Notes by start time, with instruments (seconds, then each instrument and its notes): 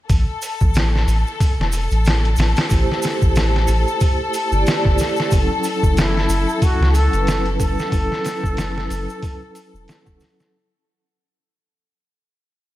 0.08 sub bass A1, string section A4, kick, open hi-hat, shaker
0.42 open hi-hat, shaker
0.60 sub bass A1, kick, shaker
0.74 snare, open hi-hat, shaker
0.95 snare
1.07 sub bass A1, open hi-hat, shaker
1.27 shaker
1.40 kick, open hi-hat, shaker
1.59 sub bass E1, snare
1.72 open hi-hat, shaker
1.91 sub bass A1, closed hi-hat, shaker
2.05 snare, open hi-hat, shaker
2.25 closed hi-hat
2.36 sub bass A1, snare, open hi-hat, shaker
2.56 snare, open hi-hat, shaker
2.68 sub bass A1, vibraphone A3 E4 G4, kick, open hi-hat, shaker
2.73 vibraphone C5
2.92 snare
3.02 snare, open hi-hat, shaker
3.22 sub bass A1, kick, shaker
3.35 snare, open hi-hat, shaker
3.56 snare
3.67 sub bass A1, open hi-hat, shaker
3.88 shaker
4.00 kick, open hi-hat, shaker
4.34 open hi-hat, shaker
4.50 sub bass G1, vibraphone A3 E4 G4, shaker
4.54 vibraphone D5
4.66 snare, open hi-hat, shaker
4.85 sub bass G1, kick
4.98 snare, open hi-hat, shaker
5.16 snare, shaker
5.29 sub bass F#1, vibraphone F#3 C#4 E4, kick, open hi-hat, shaker
5.34 vibraphone A4
5.63 open hi-hat, shaker
5.83 sub bass F#1, kick, shaker
5.97 muted trumpet E4, snare, open hi-hat, shaker
6.17 snare
6.29 sub bass F#1, open hi-hat, shaker
6.49 shaker
6.62 muted trumpet F#4, kick, open hi-hat, shaker
6.80 sub bass C#2, snare
6.94 muted trumpet A4, open hi-hat, shaker
7.11 sub bass F#1, vibraphone F#3 C#4 E4, closed hi-hat, shaker
7.15 vibraphone B4
7.27 snare, open hi-hat, shaker
7.46 closed hi-hat
7.60 sub bass F#1, muted trumpet A4, kick, open hi-hat, shaker
7.79 snare, shaker
7.89 sub bass F#1, vibraphone F#3 C#4 E4, kick, open hi-hat, shaker
7.94 vibraphone A4
8.12 snare
8.25 snare, open hi-hat, shaker
8.44 sub bass F#1, kick, shaker
8.57 snare, open hi-hat, shaker
8.78 snare
8.90 sub bass F#1, open hi-hat, shaker
9.09 shaker
9.22 kick, open hi-hat, shaker
9.55 open hi-hat, shaker
9.74 sub bass E1, shaker
9.88 snare, open hi-hat, shaker
10.06 sub bass E1, vibraphone F#3 C#4 E4 A4, kick, shaker
10.20 snare, open hi-hat, shaker
10.40 snare, shaker